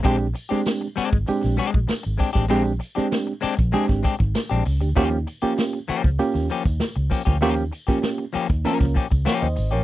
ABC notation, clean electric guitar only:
X:1
M:4/4
L:1/16
Q:1/4=98
K:Eb
V:1 name="Clean electric guitar"
[A,CDG] z2 [A,CDG] z2 [A,CDG] z3 [A,CDG] z3 [A,CDG] [A,CDG] | [A,CDG] z2 [A,CDG] z2 [A,CDG] z [A,CDA] z [A,CDG] z2 [A,CDG] z2 | [F,B,_DG] z2 [F,B,DG] z2 [F,B,DG] z3 [F,B,DG] z3 [F,B,DG] [F,B,DG] | [F,B,_DG] z2 [F,B,DG] z2 [F,B,DG] z [F,B,DB] z [F,B,DG] z [F,B,DG] z2 [F,B,DG] |]